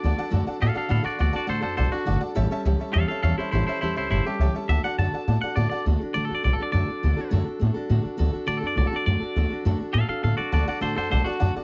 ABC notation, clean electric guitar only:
X:1
M:4/4
L:1/8
Q:1/4=206
K:D
V:1 name="Clean electric guitar"
d2 z2 [A=f] [Af] [Af] [^Fd] | [Fd] [Fd] [A=c] [Ac] [Ac] F2 z | z4 [A=f] [Af] [Af] [E=c] | [E=c] [Ec] [Ec] [Ec] [Ec] G2 z |
e f a3 f d d | z2 (3d A d (3d A d d2- | d2 z6 | z2 (3d A d (3d A d d2- |
d2 z2 [A=f] [Af] [Af] [^Fd] | [Fd] [Fd] [A=c] [Ac] [Ac] F2 z |]